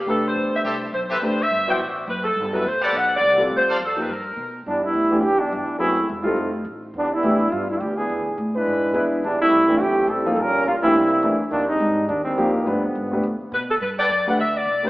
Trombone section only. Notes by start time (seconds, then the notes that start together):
4.67 E3 G3 B3 D4
4.84 G3 B3 D4 E4
5.24 E3 B3 D4 G4
5.39 E3 G3 B3 D4
5.80 F#3 A3 C4 E4
6.24 A3 C4 D#4 F4
6.96 E3 G3 B3 D4
7.14 G3 B3 D4 E4
7.52 G3 B3 D4 F4
7.70 G3 B3 D4 E4
7.80 E3 B3 D4 G4
7.98 E3 B3 D4 G#4
8.56 G#3 D4 E4 B4
9.24 E3 G3 B3 D4
9.41 G3 A3 C4 E4
9.81 E3 A3 C4 G4
10.10 G3 C4 E4 A4
10.34 A4
10.41 G3 C#4 F4 A#4
10.67 G3 A#3 C#4 F4
10.83 G3 A#3 C4 E4
11.50 D#3 G3 A#3 D4
11.69 G3 G#3 C4 D#4
12.08 D#3 G3 A#3 D4
12.25 D#3 G3 G#3 C4
12.54 D3 F3 G3 B3